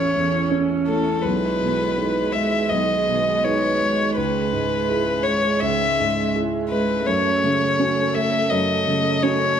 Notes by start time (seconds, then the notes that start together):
Already playing: A1 E2 A3 C#4 E4 A4 C#5
0.16 E2
0.51 C#4 C#5
0.87 A3 A4
1.22 B1 D#3 G#3 G#4 B4
1.61 B2
1.98 D#4 B4
2.33 G#3 E5
2.69 B1 D#5
3.08 B2
3.44 D#4 B4 C#5
3.81 G#3
4.16 C#2 C#4 B4 E5
4.53 G#2
4.89 E4 G#4
5.23 G#3 C#5
5.61 C#2 E5
6.00 G#2
6.36 E4 G#4
6.69 G#3 B4
7.05 F#2 A3 A4 C#5
7.44 C#3
7.79 C#4 F#4
8.15 A3 E5
8.49 F#2 D#5
8.87 C#3
9.22 C#4 F#4 C#5